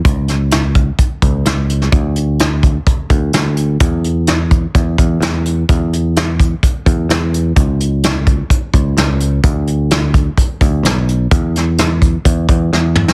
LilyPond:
<<
  \new Staff \with { instrumentName = "Picked electric bass" } { \clef bass \time 4/4 \key b \dorian \tempo 4 = 128 cis,2 r8 cis,8 cis,4 | d,2 r8 d,8 d,4 | e,2 e,8 e,8 e,4 | e,2 r8 e,8 e,4 |
cis,2 r8 cis,8 cis,4 | d,2 r8 d,8 b,,4 | e,2 e,8 e,8 e,4 | }
  \new DrumStaff \with { instrumentName = "Drums" } \drummode { \time 4/4 <hh bd>8 <hh sn>8 <hh sn>8 <hh bd>8 <hh bd>8 <hh bd>8 <hh sn>8 hh16 sn16 | <hh bd>8 hh8 <hh sn>8 <hh bd>8 <hh bd>8 <hh bd>8 <hh sn>8 hh8 | <hh bd>8 hh8 <hh sn>8 <hh bd>8 <hh bd>8 <hh bd>8 <hh sn>8 hh8 | <hh bd>8 hh8 <hh sn>8 <hh bd>8 <hh bd>8 <hh bd>8 <hh sn>8 hh8 |
<hh bd>8 hh8 <hh sn>8 <hh bd>8 <hh bd>8 <hh bd>8 <hh sn>8 hh8 | <hh bd>8 hh8 <hh sn>8 <hh bd>8 <hh bd>8 <hh bd>8 <hh sn>8 hh8 | <hh bd>8 <hh sn>8 <hh sn>8 <hh bd>8 <hh bd>8 <hh bd>8 sn8 toml16 sn16 | }
>>